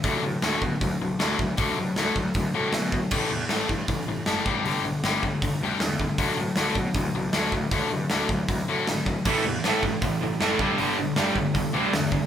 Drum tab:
CC |--------|--------|x-------|--------|
HH |o-o-o-o-|o-o-o-o-|--o-o-o-|o-o-o-o-|
SD |--o---o-|--o---o-|--o---o-|--o---o-|
BD |o--oo--o|o--oo--o|o--oo--o|---oo--o|

CC |--------|--------|x-------|--------|
HH |o-o-o-o-|o-o-o-o-|--o-o-o-|o-o-o-o-|
SD |--o---o-|--o---o-|--o---o-|--o---o-|
BD |o--oo--o|o--oo--o|o--oo--o|---oo--o|